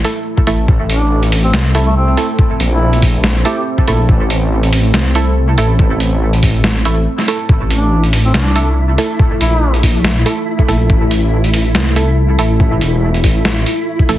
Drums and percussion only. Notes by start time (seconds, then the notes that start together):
0.04 closed hi-hat
0.38 kick
0.47 closed hi-hat
0.68 kick
0.90 closed hi-hat
1.23 closed hi-hat
1.32 open hi-hat
1.54 snare
1.75 closed hi-hat
2.17 closed hi-hat
2.39 kick
2.60 closed hi-hat
2.93 closed hi-hat
3.02 kick, open hi-hat
3.24 snare
3.45 closed hi-hat
3.78 kick
3.88 closed hi-hat
4.09 kick
4.30 closed hi-hat
4.63 closed hi-hat
4.73 open hi-hat
4.94 snare
5.15 closed hi-hat
5.58 closed hi-hat
5.79 kick
6.00 closed hi-hat
6.33 closed hi-hat
6.43 kick, open hi-hat
6.64 snare
6.85 closed hi-hat
7.18 snare
7.28 closed hi-hat
7.49 kick
7.70 closed hi-hat
8.04 closed hi-hat
8.13 open hi-hat
8.34 snare
8.56 closed hi-hat
8.98 closed hi-hat
9.19 kick
9.41 closed hi-hat
9.74 closed hi-hat
9.83 kick, open hi-hat
10.05 snare
10.26 closed hi-hat
10.59 kick
10.68 closed hi-hat
10.90 kick
11.11 closed hi-hat
11.44 closed hi-hat
11.54 open hi-hat
11.75 snare
11.96 closed hi-hat
12.39 closed hi-hat
12.60 kick
12.81 closed hi-hat
13.14 closed hi-hat
13.24 kick, open hi-hat
13.45 snare
13.66 closed hi-hat
13.99 kick
14.09 closed hi-hat